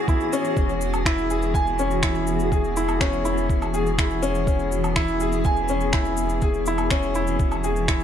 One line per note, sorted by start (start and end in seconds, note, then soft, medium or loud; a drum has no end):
0.00 8.04 E3 medium
0.00 8.04 B3 medium
0.00 0.33 C#4 medium
0.00 0.09 E4 medium
0.00 8.04 F#4 medium
0.00 0.59 G#4 medium
0.00 8.04 G#4 medium
0.08 0.32 E4 medium
0.08 kick loud
0.08 shaker soft
0.21 shaker soft
0.33 0.56 C#4 loud
0.33 shaker medium
0.45 shaker soft
0.57 8.04 E1 medium
0.57 0.80 C#4 medium
0.57 kick loud
0.57 shaker soft
0.69 shaker soft
0.81 shaker medium
0.94 low woodblock medium
0.94 shaker soft
1.06 1.29 E4 medium
1.06 finger snap medium
1.06 kick loud
1.06 shaker soft
1.18 shaker soft
1.30 1.53 G#4 medium
1.30 shaker medium
1.42 shaker soft
1.54 1.78 G#5 medium
1.54 kick loud
1.54 shaker soft
1.67 shaker soft
1.79 2.02 C#4 medium
1.79 shaker medium
1.91 shaker soft
2.03 2.26 E4 medium
2.03 finger snap loud
2.03 kick loud
2.03 shaker soft
2.15 shaker soft
2.27 shaker medium
2.40 shaker soft
2.52 2.75 G#4 medium
2.52 kick loud
2.52 shaker soft
2.64 shaker soft
2.77 2.91 E4 medium
2.77 shaker medium
2.89 low woodblock medium
2.89 shaker soft
3.01 3.24 C#4 loud
3.01 finger snap medium
3.01 kick loud
3.01 shaker soft
3.13 shaker soft
3.25 3.39 E4 medium
3.25 shaker medium
3.38 shaker soft
3.50 kick loud
3.50 shaker soft
3.62 low woodblock medium
3.62 shaker soft
3.74 3.97 G#4 medium
3.74 shaker medium
3.87 shaker soft
3.98 4.22 E4 medium
3.98 finger snap loud
3.98 kick loud
3.98 shaker soft
4.11 shaker soft
4.23 4.46 C#4 loud
4.23 shaker medium
4.35 shaker soft
4.47 4.70 C#4 medium
4.47 kick loud
4.47 shaker soft
4.59 shaker soft
4.72 shaker medium
4.84 low woodblock medium
4.84 shaker soft
4.96 5.19 E4 loud
4.96 finger snap medium
4.96 kick loud
4.96 shaker soft
5.08 shaker soft
5.20 5.44 G#4 medium
5.20 shaker medium
5.32 shaker soft
5.44 5.68 G#5 medium
5.44 kick loud
5.44 shaker soft
5.56 shaker soft
5.68 5.93 C#4 medium
5.68 shaker medium
5.81 shaker soft
5.93 6.17 E4 medium
5.93 finger snap loud
5.93 kick loud
5.93 shaker soft
6.05 shaker soft
6.17 shaker medium
6.30 shaker soft
6.42 6.66 G#4 medium
6.42 kick loud
6.42 shaker soft
6.54 shaker soft
6.66 6.81 E4 medium
6.66 shaker medium
6.78 low woodblock medium
6.78 shaker soft
6.90 7.14 C#4 loud
6.90 finger snap medium
6.90 kick loud
6.90 shaker soft
7.03 shaker soft
7.15 7.29 E4 medium
7.15 shaker medium
7.27 shaker soft
7.40 kick loud
7.40 shaker soft
7.52 low woodblock medium
7.52 shaker soft
7.64 7.87 G#4 medium
7.64 shaker medium
7.76 shaker soft
7.88 8.04 E4 medium
7.88 finger snap medium
7.88 kick loud
7.88 shaker soft
8.00 shaker soft